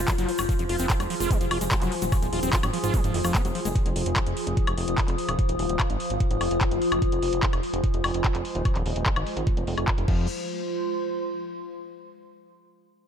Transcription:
Already playing: synth drone F3 F4, ambient pad F4 C5 C6
0.08 acid bass F#3, kick, clap, closed hi-hat, shaker
0.18 analog synth bass F#1, acid bass F#3, closed hi-hat, shaker
0.29 acid bass F3, open hi-hat
0.38 analog synth bass F#1, acid bass F#3, closed hi-hat, high woodblock, shaker
0.49 acid bass F3, synth drone G#4, kick, closed hi-hat, shaker
0.59 analog synth bass F1, acid bass F3, closed hi-hat, shaker
0.69 analog synth bass F1, acid bass F4, open hi-hat
0.79 analog synth bass F1, acid bass C4, closed hi-hat, shaker
0.90 acid bass F4, kick, clap, closed hi-hat, shaker
1.00 analog synth bass F1, acid bass F#3, closed hi-hat, high woodblock, shaker
1.10 acid bass F3, open hi-hat
1.20 analog synth bass F1, acid bass F4, closed hi-hat, shaker
1.31 acid bass F#3, kick, closed hi-hat, shaker
1.41 analog synth bass F1, acid bass F3, closed hi-hat, shaker
1.51 analog synth bass F1, acid bass F4, open hi-hat, high woodblock
1.61 analog synth bass F1, acid bass G#3, closed hi-hat, shaker
1.71 acid bass F#3, kick, clap, closed hi-hat, shaker
1.82 analog synth bass F1, acid bass F#3, clap, closed hi-hat, shaker
1.92 acid bass F3, open hi-hat
2.02 analog synth bass D#1, acid bass F#3, closed hi-hat, shaker
2.12 acid bass F3, kick, closed hi-hat, high woodblock, shaker
2.22 analog synth bass D#1, acid bass F3, closed hi-hat, shaker
2.33 analog synth bass D#1, acid bass F4, open hi-hat
2.43 analog synth bass D#1, acid bass C4, closed hi-hat, shaker
2.53 acid bass F4, kick, clap, closed hi-hat, shaker
2.63 analog synth bass G#1, acid bass F#3, closed hi-hat, high woodblock, shaker
2.73 acid bass F3, open hi-hat
2.84 analog synth bass G#1, acid bass F4, closed hi-hat, shaker
2.94 acid bass F#3, kick, closed hi-hat, shaker
3.04 analog synth bass G#1, acid bass F3, closed hi-hat, shaker
3.14 analog synth bass F1, acid bass D#3, open hi-hat
3.24 analog synth bass F1, acid bass F3, closed hi-hat, high woodblock, shaker
3.35 acid bass C4, kick, clap, closed hi-hat, shaker
3.45 analog synth bass F1, acid bass F#3, closed hi-hat, shaker
3.55 acid bass F3, open hi-hat
3.65 analog synth bass F1, acid bass G#3, closed hi-hat, shaker
3.75 synth drone F4, kick, closed hi-hat
3.84 analog synth bass F1, ambient pad D#6, closed hi-hat
3.96 analog synth bass F1, open hi-hat
4.06 analog synth bass F1, closed hi-hat
4.16 kick, clap, closed hi-hat, high woodblock
4.27 analog synth bass F1, closed hi-hat
4.37 open hi-hat
4.47 analog synth bass F1, closed hi-hat
4.57 kick, closed hi-hat
4.67 analog synth bass F1, closed hi-hat, high woodblock
4.78 analog synth bass F1, open hi-hat
4.88 analog synth bass F1, closed hi-hat
4.98 kick, clap, closed hi-hat
5.08 analog synth bass F1, clap, closed hi-hat
5.18 open hi-hat
5.29 analog synth bass D#1, closed hi-hat, high woodblock
5.39 kick, closed hi-hat
5.49 analog synth bass D#1, closed hi-hat
5.59 analog synth bass D#1, open hi-hat
5.69 analog synth bass D#1, closed hi-hat
5.80 kick, clap, closed hi-hat, high woodblock
5.90 analog synth bass G#1, closed hi-hat
6.00 open hi-hat
6.10 analog synth bass G#1, closed hi-hat
6.20 kick, closed hi-hat
6.31 analog synth bass G#1, closed hi-hat
6.41 analog synth bass F1, open hi-hat, high woodblock
6.51 analog synth bass F1, closed hi-hat
6.61 kick, clap, closed hi-hat
6.71 analog synth bass F#1, closed hi-hat
6.82 open hi-hat
6.92 analog synth bass F#1, closed hi-hat, high woodblock
7.02 synth drone G#3, kick, closed hi-hat
7.12 analog synth bass F1, closed hi-hat
7.22 analog synth bass F1, open hi-hat
7.33 analog synth bass F1, closed hi-hat
7.43 kick, clap, closed hi-hat
7.53 analog synth bass F1, closed hi-hat, high woodblock
7.63 open hi-hat
7.73 analog synth bass F1, closed hi-hat
7.84 kick, closed hi-hat
7.94 analog synth bass F1, closed hi-hat
8.04 analog synth bass F1, open hi-hat, high woodblock
8.14 analog synth bass F1, closed hi-hat
8.24 kick, clap, closed hi-hat
8.35 analog synth bass F1, clap, closed hi-hat
8.45 open hi-hat
8.55 analog synth bass D#1, closed hi-hat
8.65 kick, closed hi-hat, high woodblock
8.75 analog synth bass D#1, clap, closed hi-hat
8.86 analog synth bass D#1, open hi-hat
8.96 analog synth bass D#1, closed hi-hat
9.06 kick, clap, closed hi-hat
9.16 analog synth bass G#1, closed hi-hat, high woodblock
9.27 open hi-hat
9.37 analog synth bass G#1, closed hi-hat
9.47 kick, closed hi-hat
9.57 analog synth bass F1, closed hi-hat
9.67 analog synth bass F1, open hi-hat
9.77 analog synth bass F1, closed hi-hat, high woodblock
9.88 kick, clap, closed hi-hat
9.98 analog synth bass F1, closed hi-hat
10.08 analog synth bass F1, acid bass F3, ambient pad F4, kick, crash
10.14 ambient pad C5
10.41 ambient pad C6

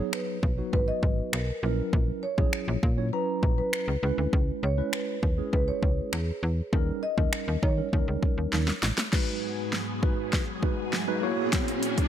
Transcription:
Already playing: tine electric piano F#3 B3, marimba C#5
0.00 tine electric piano D#4 G#4
0.13 marimba B4, finger snap
0.43 fm bass B1, kick
0.58 tine electric piano F#3 B3 D#4 F#4
0.73 fm bass G#1, marimba B4, kick
0.88 marimba D#5
1.03 fm bass G#1, kick
1.33 fm bass B1, marimba A#4, finger snap
1.63 fm bass A#1, tine electric piano F#3 C#4 E4 A#4
1.93 fm bass A#1, kick
2.23 marimba C#5
2.38 fm bass A#1, tine electric piano F#3 C#4 E4 G#4, kick
2.53 finger snap
2.68 fm bass A#1
2.83 fm bass A#2, kick
2.98 tine electric piano F#3 C#4 E4 C#5
3.13 tine electric piano F#3 C#4 E4 A#5, marimba B4
3.43 fm bass A#1, kick
3.58 marimba B4
3.73 marimba B4, finger snap
3.88 fm bass C#2
4.03 fm bass C#2, tine electric piano G#3 C#4 E4 B4
4.18 fm bass D2
4.33 fm bass C#2, kick
4.63 fm bass C#2, marimba C#5
4.78 tine electric piano G#3 C#4 E4 B4
4.93 marimba B4, finger snap
5.23 fm bass D#2, kick
5.38 tine electric piano G#3 C#4 E4 G#4
5.53 fm bass C#2, marimba B4, kick
5.68 marimba C#5
5.83 fm bass C#2, kick
6.13 fm bass E2, marimba G#4, finger snap
6.43 fm bass E2
6.73 fm bass D#2, tine electric piano G3 C#4 D#4 A#4, kick
7.03 marimba D#5
7.18 fm bass D#2, tine electric piano G3 C#4 D#4 A#4, kick
7.33 finger snap
7.48 fm bass D#2
7.63 fm bass D#3, marimba C#5, kick
7.78 tine electric piano G3 C#4 D#4 A#4
7.93 fm bass D#2, tine electric piano G3 C#4 D#4 A#4, kick
8.08 fm bass C#2
8.23 kick
8.38 fm bass D#2
8.53 fm bass D#2, snare
8.68 snare
8.83 fm bass A1, snare
8.98 snare
9.13 string machine G#2 F#3 B3 G#4, tine electric piano G#3 D#4 F#4 B4, kick, snare, crash, riser
9.73 snare
10.03 tine electric piano G#3 D#4 F#4 B4, kick
10.33 kick, snare
10.63 tine electric piano G#3 D#4 F#4 B4, kick
10.93 snare
11.08 tine electric piano G#3 D#4 F#4 B4
11.22 string machine A#2 E4, tine electric piano A#3 E4 F#4 C#5
11.53 kick, snare, closed hi-hat
11.68 closed hi-hat
11.83 closed hi-hat
11.98 kick, closed hi-hat

